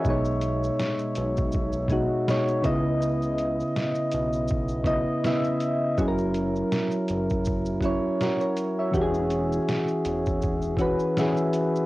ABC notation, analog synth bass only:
X:1
M:4/4
L:1/16
Q:"Swing 16ths" 1/4=81
K:B
V:1 name="Analog synth bass" clef=bass
B,,,4 z2 B,,,4- B,,, z3 C,,2- | C,,4 z2 B,,,4- B,,, z4 z | F,,,4 z2 F,,,4- F,,, z4 z | E,,,4 z2 E,,,4- E,,, z4 z |]